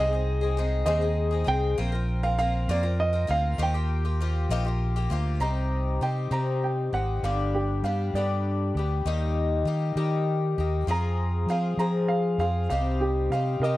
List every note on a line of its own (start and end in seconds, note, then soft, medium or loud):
0.00 0.82 C2 medium
0.00 0.12 C3 medium
0.00 0.12 G#3 medium
0.00 0.12 C4 medium
0.00 0.12 D#4 medium
0.00 0.11 G#4 medium
0.00 0.84 D#5 loud
0.12 0.43 C4 soft
0.12 0.42 D#4 soft
0.12 0.40 G#4 soft
0.41 0.57 C4 soft
0.41 0.57 D#4 soft
0.41 0.56 G#4 soft
0.57 0.86 G#3 medium
0.57 0.85 C4 medium
0.57 0.87 D#4 medium
0.57 0.86 G#4 medium
0.86 1.43 D#2 medium
0.86 1.02 C3 medium
0.86 1.02 G#3 medium
0.86 1.02 C4 medium
0.86 1.01 D#4 medium
0.86 1.00 G#4 medium
0.86 1.49 D#5 medium
1.02 1.33 C4 soft
1.02 1.31 D#4 medium
1.02 1.30 G#4 medium
1.31 1.45 C4 soft
1.31 1.46 D#4 soft
1.31 1.46 G#4 medium
1.44 1.75 C2 loud
1.44 1.76 G#3 medium
1.44 1.76 C4 medium
1.44 1.77 D#4 medium
1.44 1.78 G#4 medium
1.44 2.26 G5 loud
1.78 2.65 A#1 loud
1.78 1.93 A#3 medium
1.78 1.93 C4 medium
1.78 1.93 F4 medium
1.78 1.91 A#4 medium
1.92 2.24 C4 soft
1.92 2.23 F4 soft
1.92 2.22 A#4 medium
2.23 2.38 C4 soft
2.23 2.39 F4 soft
2.23 2.38 A#4 medium
2.23 2.37 F5 medium
2.38 2.68 A#3 medium
2.38 2.68 C4 medium
2.38 2.68 F4 medium
2.38 2.70 A#4 medium
2.38 2.70 F5 loud
2.68 3.25 F2 medium
2.68 2.84 A#3 medium
2.68 2.84 C4 medium
2.68 2.82 F4 medium
2.68 2.82 A#4 medium
2.68 2.98 D5 medium
2.83 3.14 C4 soft
2.83 3.13 F4 medium
2.83 3.12 A#4 medium
3.00 3.31 D#5 loud
3.13 3.27 C4 soft
3.13 3.27 F4 soft
3.13 3.28 A#4 medium
3.27 3.56 D2 loud
3.27 3.58 A#3 medium
3.27 3.59 C4 medium
3.27 3.58 F4 medium
3.27 3.59 A#4 medium
3.27 3.61 F5 loud
3.58 4.46 D#2 medium
3.58 3.74 D#3 medium
3.58 3.74 F3 medium
3.58 3.74 A#3 medium
3.58 3.74 F4 medium
3.58 3.73 G4 medium
3.63 4.78 G5 medium
3.74 4.05 A#3 soft
3.74 4.04 F4 medium
3.74 4.03 G4 medium
4.05 4.21 A#3 soft
4.05 4.20 F4 soft
4.05 4.20 G4 soft
4.20 4.50 F3 medium
4.20 4.51 A#3 medium
4.20 4.50 F4 medium
4.20 4.51 G4 medium
4.49 5.07 A#1 loud
4.49 4.66 D#3 medium
4.49 4.66 F3 loud
4.49 4.66 A#3 medium
4.49 4.65 F4 medium
4.49 4.63 G4 loud
4.65 4.97 A#3 medium
4.65 4.96 F4 medium
4.65 4.95 G4 medium
4.96 5.10 A#3 medium
4.96 5.11 F4 medium
4.96 5.11 G4 medium
5.10 5.38 D2 medium
5.10 5.41 F3 medium
5.10 5.40 A#3 medium
5.10 5.41 F4 medium
5.10 5.41 G4 medium
5.40 5.98 C2 medium
5.40 6.02 C3 medium
5.40 6.01 G3 medium
5.40 6.01 C4 medium
5.40 6.01 D#4 medium
5.40 6.02 G4 medium
5.40 6.00 A#5 medium
6.01 6.29 C3 medium
6.01 6.31 G3 medium
6.01 6.31 C4 medium
6.01 6.31 D#4 medium
6.01 6.30 G4 medium
6.01 6.32 G5 medium
6.31 6.89 C3 medium
6.31 6.94 C3 medium
6.31 7.24 G3 medium
6.31 6.93 C4 medium
6.31 6.93 D#4 medium
6.31 6.92 G4 medium
6.31 6.62 A#5 medium
6.64 6.93 G5 medium
6.92 7.20 G#1 medium
6.92 7.24 C4 soft
6.92 7.24 D#4 soft
6.92 7.23 G4 soft
6.92 7.23 F#5 medium
7.23 7.80 G1 medium
7.23 7.85 G2 medium
7.23 7.85 D3 medium
7.23 7.83 G3 medium
7.23 7.83 B3 medium
7.23 7.84 D4 medium
7.23 7.86 G4 medium
7.23 7.53 F5 medium
7.55 7.84 G4 medium
7.83 8.11 G2 medium
7.83 8.15 G3 medium
7.83 8.15 B3 medium
7.83 8.15 D4 medium
7.83 8.14 G4 medium
7.83 8.14 F5 medium
8.14 8.71 G2 medium
8.14 8.77 D3 medium
8.14 8.77 G3 medium
8.14 8.77 B3 medium
8.14 8.76 D4 medium
8.14 8.76 G4 medium
8.14 8.74 D5 medium
8.18 8.77 G2 medium
8.75 9.03 D2 medium
8.75 9.06 B3 soft
8.75 9.07 D4 soft
8.75 9.06 G4 medium
8.79 9.06 G3 soft
9.05 9.63 D#2 medium
9.05 9.67 D#3 medium
9.05 9.64 G3 medium
9.05 9.66 A#3 medium
9.05 9.66 D#4 medium
9.05 9.67 G4 medium
9.65 9.93 D#3 medium
9.65 9.96 G3 medium
9.65 9.96 A#3 medium
9.65 9.96 D#4 medium
9.65 9.96 G4 medium
9.96 10.54 D#3 medium
9.96 10.59 D#3 medium
9.96 10.58 G3 medium
9.96 10.58 A#3 medium
9.96 10.58 D#4 medium
9.96 10.57 G4 medium
10.58 10.86 D#2 medium
10.58 10.88 A#3 soft
10.58 10.88 D#4 medium
10.58 10.89 G4 medium
10.87 11.45 F2 loud
10.87 11.47 F3 medium
10.87 11.49 C4 medium
10.87 11.48 F4 medium
10.87 11.49 G#4 medium
10.87 11.49 A#5 medium
11.46 11.75 F3 medium
11.46 11.79 F3 medium
11.46 11.79 C4 medium
11.46 11.79 F4 medium
11.46 11.80 F5 medium
11.50 11.78 G#4 medium
11.77 12.36 F3 medium
11.77 12.41 F3 medium
11.77 12.40 C4 medium
11.77 12.39 F4 medium
11.77 12.38 G#4 medium
11.77 12.09 A#5 medium
12.08 12.38 F5 medium
12.38 12.67 F2 medium
12.38 12.70 C4 soft
12.38 12.71 F4 soft
12.38 12.71 G#4 soft
12.38 12.68 F5 medium
12.70 13.28 C2 medium
12.70 13.32 C3 medium
12.70 13.31 G3 medium
12.70 13.32 C4 medium
12.70 13.33 D#4 medium
12.70 13.34 G4 medium
12.70 13.00 F5 medium
13.01 13.31 G4 medium
13.30 13.58 C3 medium
13.30 13.63 G3 medium
13.30 13.63 C4 medium
13.30 13.64 D#4 medium
13.30 13.62 F5 medium
13.35 13.63 G4 medium
13.60 13.77 C3 medium
13.60 13.77 A#4 medium
13.60 13.77 D#5 medium
13.64 13.77 C3 medium
13.64 13.77 G3 medium
13.64 13.77 C4 medium
13.64 13.77 D#4 medium
13.64 13.77 G4 medium